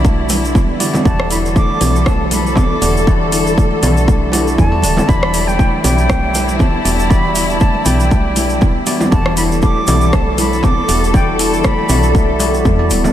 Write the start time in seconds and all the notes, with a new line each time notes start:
Already playing: B1 D3 E3 G3 E4 F#4 D5
0.05 A3, kick, high conga, shaker
0.29 E4, open hi-hat, high conga, shaker
0.45 shaker
0.55 B3, kick, high conga, shaker
0.80 D3 G3 E4 F#4 D5, open hi-hat, high conga, shaker
0.94 high conga, low conga, shaker
1.05 E1 E3 G3 E4 F#4 A4 D5 A5, kick, shaker
1.20 cross-stick
1.31 E4 B5, open hi-hat, shaker
1.46 shaker
1.56 A3 D6, kick, shaker
1.81 B1 E3 G3 E4 F#4 D5, open hi-hat, low conga, shaker
1.96 shaker
2.06 A3 A5, kick, cross-stick, high conga, low conga, shaker
2.31 E4 B5, open hi-hat, high conga, shaker
2.45 high conga, shaker
2.56 B3 D6, kick, low conga, shaker
2.82 E1 D3 G3 E4 F#4 D5, open hi-hat, shaker
2.97 shaker
3.07 E3 G3 E4 F#4 D5, kick, shaker
3.32 E4, open hi-hat, shaker
3.47 shaker
3.58 A3, kick, shaker
3.71 high conga
3.83 B1 E3 G3 E4 F#4 D5, open hi-hat, low conga, shaker
3.97 shaker
4.08 A3, kick, high conga, shaker
4.32 G3 E4 F#4 D5, open hi-hat, high conga, shaker
4.47 shaker
4.58 E2 B3 A5, kick, high conga, shaker
4.72 G3 E4 F#4 D5
4.82 D1 D3, open hi-hat, high conga, shaker
4.97 high conga, low conga, shaker
5.08 E1 E3 F#3 G3 E4 D5 B5, kick, shaker
5.23 cross-stick
5.34 E4, open hi-hat, shaker
5.47 G5, shaker
5.59 A3, kick, shaker
5.84 B1 E3 F#3 G3 E4 D5 G5, open hi-hat, low conga, shaker
5.98 shaker
6.09 A3, kick, cross-stick, high conga, low conga, shaker
6.35 E4, open hi-hat, high conga, shaker
6.48 high conga, shaker
6.59 B3 A5, kick, low conga, shaker
6.85 E1 G3 B3 E4 F#4 D5, open hi-hat, shaker
6.99 shaker
7.10 E3 G3 E4 F#4 D5 B5, kick, shaker
7.35 E4, open hi-hat, shaker
7.49 A5, shaker
7.60 A3, kick, shaker
7.75 high conga
7.85 B1 E3 F#3 G3 E4 D5 G5, open hi-hat, low conga, shaker
8.00 shaker
8.11 A3, kick, high conga, shaker
8.36 E4, open hi-hat, high conga, shaker
8.49 shaker
8.61 B3, kick, high conga, shaker
8.86 G3 B3 E4 F#4 D5, open hi-hat, high conga, shaker
9.00 high conga, low conga, shaker
9.12 E1 E3 G3 E4 F#4 A4 D5 A5, kick, shaker
9.26 cross-stick
9.37 E4 B5, open hi-hat, shaker
9.52 shaker
9.62 A3 D6, kick, shaker
9.87 B1 E3 G3 E4 F#4 D5, open hi-hat, low conga, shaker
10.01 shaker
10.13 A3 A5, kick, cross-stick, high conga, low conga, shaker
10.38 E4 B5, open hi-hat, high conga, shaker
10.52 high conga, shaker
10.63 B3 D6, kick, low conga, shaker
10.88 E1 G3 B3 E4 F#4 D5, open hi-hat, shaker
11.04 shaker
11.14 E3 G3 E4 F#4 D5 G5, kick, shaker
11.39 E4 A5, open hi-hat, shaker
11.53 shaker
11.64 A3 B5, kick, cross-stick, shaker
11.79 high conga
11.89 B1 E3 G3 E4 F#4 D5, open hi-hat, low conga, shaker
12.03 shaker
12.15 A3 E5, kick, high conga, shaker
12.40 G3 E4 F#4 D5, open hi-hat, high conga, shaker
12.54 shaker
12.65 E2 B3, kick, high conga, shaker
12.79 G3 E4 F#4 D5
12.90 D1 B3, open hi-hat, high conga, shaker
13.04 high conga, low conga, shaker